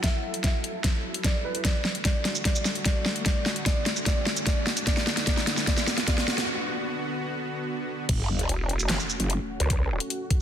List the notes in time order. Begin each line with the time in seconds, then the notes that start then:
Already playing: F#3 E4 A4
0.04 E5, kick, snare, closed hi-hat
0.34 closed hi-hat
0.44 E5, kick, snare, closed hi-hat
0.64 closed hi-hat
0.84 kick, snare, closed hi-hat
1.14 closed hi-hat
1.24 D5, kick, snare, closed hi-hat
1.45 B4
1.55 closed hi-hat
1.65 D3 A3 F#4 D5, kick, snare, closed hi-hat, riser
1.85 snare
1.95 closed hi-hat
2.05 D5, kick, snare, closed hi-hat
2.25 snare, closed hi-hat
2.35 shaker
2.45 D5, kick, snare, closed hi-hat
2.55 shaker
2.65 snare, shaker
2.75 closed hi-hat
2.85 D5, kick, snare, closed hi-hat
3.06 snare
3.16 closed hi-hat
3.26 D5, kick, snare, closed hi-hat
3.46 snare
3.56 closed hi-hat
3.66 D5, kick, snare, closed hi-hat
3.86 snare, closed hi-hat
3.96 shaker
4.06 D5, kick, snare, closed hi-hat
4.26 snare
4.37 closed hi-hat, shaker
4.47 D5, kick, snare, closed hi-hat
4.67 snare
4.77 closed hi-hat, shaker
4.87 B3 F#4 D5, kick, snare, closed hi-hat
4.97 snare
5.07 snare
5.17 snare, closed hi-hat
5.27 D5, kick, snare, closed hi-hat
5.37 snare
5.47 snare, closed hi-hat
5.57 snare, shaker
5.67 D5, kick, snare, closed hi-hat
5.77 snare, shaker
5.87 snare, shaker
5.98 snare, closed hi-hat
6.08 D5, kick, snare, closed hi-hat
6.18 snare
6.28 snare
6.38 snare, closed hi-hat
8.09 F#1 A3 C#4 F#4, kick, closed hi-hat, crash, sub drop
8.39 closed hi-hat
8.49 E1, closed hi-hat
8.69 closed hi-hat
8.80 shaker
8.89 F#1, snare, clap, closed hi-hat
9.00 shaker
9.10 shaker
9.20 F#1, closed hi-hat
9.30 closed hi-hat
9.60 C#2, closed hi-hat
9.70 kick, closed hi-hat
10.00 closed hi-hat
10.10 closed hi-hat
10.30 kick, closed hi-hat